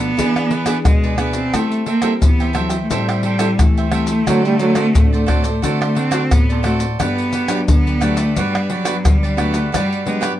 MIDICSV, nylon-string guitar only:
0, 0, Header, 1, 2, 480
1, 0, Start_track
1, 0, Key_signature, 1, "major"
1, 0, Tempo, 682594
1, 1084, Time_signature, 4, 2, 24, 8
1, 7313, End_track
2, 0, Start_track
2, 0, Title_t, "Nylon-string guitar"
2, 0, Program_c, 0, 24
2, 0, Note_on_c, 0, 47, 70
2, 0, Note_on_c, 0, 53, 54
2, 0, Note_on_c, 0, 57, 60
2, 0, Note_on_c, 0, 62, 62
2, 79, Note_off_c, 0, 53, 0
2, 81, Note_off_c, 0, 57, 0
2, 83, Note_off_c, 0, 62, 0
2, 97, Note_off_c, 0, 47, 0
2, 125, Note_on_c, 0, 52, 65
2, 128, Note_on_c, 0, 62, 54
2, 129, Note_on_c, 0, 59, 57
2, 132, Note_on_c, 0, 68, 62
2, 350, Note_off_c, 0, 59, 0
2, 351, Note_off_c, 0, 62, 0
2, 353, Note_off_c, 0, 68, 0
2, 463, Note_on_c, 0, 59, 59
2, 468, Note_on_c, 0, 62, 63
2, 471, Note_on_c, 0, 68, 60
2, 580, Note_off_c, 0, 52, 0
2, 599, Note_on_c, 0, 47, 70
2, 795, Note_off_c, 0, 59, 0
2, 798, Note_off_c, 0, 62, 0
2, 799, Note_off_c, 0, 68, 0
2, 830, Note_on_c, 0, 59, 57
2, 836, Note_on_c, 0, 62, 56
2, 837, Note_on_c, 0, 68, 57
2, 979, Note_off_c, 0, 59, 0
2, 980, Note_off_c, 0, 62, 0
2, 982, Note_off_c, 0, 68, 0
2, 1058, Note_off_c, 0, 47, 0
2, 1082, Note_on_c, 0, 55, 50
2, 1085, Note_on_c, 0, 60, 55
2, 1087, Note_on_c, 0, 64, 58
2, 1308, Note_off_c, 0, 55, 0
2, 1310, Note_off_c, 0, 60, 0
2, 1310, Note_off_c, 0, 64, 0
2, 1427, Note_on_c, 0, 55, 56
2, 1430, Note_on_c, 0, 60, 56
2, 1436, Note_on_c, 0, 64, 63
2, 1569, Note_on_c, 0, 52, 67
2, 1757, Note_off_c, 0, 55, 0
2, 1758, Note_off_c, 0, 60, 0
2, 1762, Note_off_c, 0, 64, 0
2, 1796, Note_on_c, 0, 55, 57
2, 1798, Note_on_c, 0, 60, 55
2, 1801, Note_on_c, 0, 64, 58
2, 1941, Note_off_c, 0, 55, 0
2, 1942, Note_off_c, 0, 60, 0
2, 1943, Note_off_c, 0, 64, 0
2, 2022, Note_off_c, 0, 52, 0
2, 2047, Note_on_c, 0, 45, 67
2, 2047, Note_on_c, 0, 55, 54
2, 2051, Note_on_c, 0, 60, 54
2, 2053, Note_on_c, 0, 64, 63
2, 2367, Note_off_c, 0, 55, 0
2, 2368, Note_off_c, 0, 60, 0
2, 2370, Note_off_c, 0, 64, 0
2, 2381, Note_on_c, 0, 55, 59
2, 2385, Note_on_c, 0, 60, 60
2, 2388, Note_on_c, 0, 64, 65
2, 2502, Note_off_c, 0, 45, 0
2, 2532, Note_on_c, 0, 52, 71
2, 2714, Note_off_c, 0, 55, 0
2, 2716, Note_off_c, 0, 60, 0
2, 2717, Note_off_c, 0, 64, 0
2, 2758, Note_on_c, 0, 55, 58
2, 2759, Note_on_c, 0, 60, 52
2, 2764, Note_on_c, 0, 64, 62
2, 2902, Note_off_c, 0, 55, 0
2, 2902, Note_off_c, 0, 60, 0
2, 2905, Note_off_c, 0, 64, 0
2, 2984, Note_off_c, 0, 52, 0
2, 3003, Note_on_c, 0, 50, 69
2, 3005, Note_on_c, 0, 57, 56
2, 3007, Note_on_c, 0, 60, 55
2, 3012, Note_on_c, 0, 66, 58
2, 3229, Note_off_c, 0, 57, 0
2, 3230, Note_off_c, 0, 60, 0
2, 3233, Note_off_c, 0, 66, 0
2, 3349, Note_on_c, 0, 57, 61
2, 3352, Note_on_c, 0, 60, 62
2, 3356, Note_on_c, 0, 66, 72
2, 3460, Note_off_c, 0, 50, 0
2, 3487, Note_on_c, 0, 45, 68
2, 3678, Note_off_c, 0, 57, 0
2, 3680, Note_off_c, 0, 60, 0
2, 3680, Note_off_c, 0, 66, 0
2, 3717, Note_on_c, 0, 57, 58
2, 3720, Note_on_c, 0, 60, 58
2, 3723, Note_on_c, 0, 66, 59
2, 3862, Note_off_c, 0, 57, 0
2, 3863, Note_off_c, 0, 60, 0
2, 3863, Note_off_c, 0, 66, 0
2, 3942, Note_off_c, 0, 45, 0
2, 3963, Note_on_c, 0, 50, 66
2, 3966, Note_on_c, 0, 57, 55
2, 3967, Note_on_c, 0, 60, 54
2, 3972, Note_on_c, 0, 66, 59
2, 4190, Note_off_c, 0, 57, 0
2, 4191, Note_off_c, 0, 60, 0
2, 4193, Note_off_c, 0, 66, 0
2, 4309, Note_on_c, 0, 57, 62
2, 4313, Note_on_c, 0, 60, 65
2, 4317, Note_on_c, 0, 66, 64
2, 4420, Note_off_c, 0, 50, 0
2, 4447, Note_on_c, 0, 45, 73
2, 4639, Note_off_c, 0, 57, 0
2, 4641, Note_off_c, 0, 60, 0
2, 4642, Note_off_c, 0, 66, 0
2, 4679, Note_on_c, 0, 57, 54
2, 4683, Note_on_c, 0, 60, 56
2, 4684, Note_on_c, 0, 66, 58
2, 4823, Note_off_c, 0, 57, 0
2, 4825, Note_off_c, 0, 60, 0
2, 4826, Note_off_c, 0, 66, 0
2, 4902, Note_off_c, 0, 45, 0
2, 4927, Note_on_c, 0, 43, 69
2, 4930, Note_on_c, 0, 59, 60
2, 4932, Note_on_c, 0, 62, 62
2, 5249, Note_off_c, 0, 59, 0
2, 5250, Note_off_c, 0, 62, 0
2, 5262, Note_on_c, 0, 54, 58
2, 5265, Note_on_c, 0, 59, 62
2, 5269, Note_on_c, 0, 62, 73
2, 5382, Note_off_c, 0, 43, 0
2, 5406, Note_on_c, 0, 50, 69
2, 5596, Note_off_c, 0, 54, 0
2, 5597, Note_off_c, 0, 59, 0
2, 5599, Note_off_c, 0, 62, 0
2, 5633, Note_on_c, 0, 54, 55
2, 5636, Note_on_c, 0, 59, 60
2, 5641, Note_on_c, 0, 62, 62
2, 5781, Note_off_c, 0, 54, 0
2, 5782, Note_off_c, 0, 59, 0
2, 5784, Note_off_c, 0, 62, 0
2, 5862, Note_off_c, 0, 50, 0
2, 5880, Note_on_c, 0, 43, 71
2, 5883, Note_on_c, 0, 59, 54
2, 5886, Note_on_c, 0, 62, 58
2, 6206, Note_off_c, 0, 59, 0
2, 6207, Note_off_c, 0, 62, 0
2, 6218, Note_on_c, 0, 54, 60
2, 6221, Note_on_c, 0, 59, 60
2, 6222, Note_on_c, 0, 62, 69
2, 6339, Note_off_c, 0, 43, 0
2, 6357, Note_on_c, 0, 50, 74
2, 6554, Note_off_c, 0, 54, 0
2, 6555, Note_off_c, 0, 59, 0
2, 6555, Note_off_c, 0, 62, 0
2, 6587, Note_on_c, 0, 54, 55
2, 6589, Note_on_c, 0, 59, 54
2, 6593, Note_on_c, 0, 62, 63
2, 6738, Note_off_c, 0, 54, 0
2, 6739, Note_off_c, 0, 59, 0
2, 6741, Note_off_c, 0, 62, 0
2, 6818, Note_off_c, 0, 50, 0
2, 6839, Note_on_c, 0, 43, 66
2, 7073, Note_on_c, 0, 54, 63
2, 7077, Note_on_c, 0, 59, 56
2, 7078, Note_on_c, 0, 62, 66
2, 7299, Note_off_c, 0, 43, 0
2, 7305, Note_off_c, 0, 54, 0
2, 7307, Note_off_c, 0, 59, 0
2, 7308, Note_off_c, 0, 62, 0
2, 7313, End_track
0, 0, End_of_file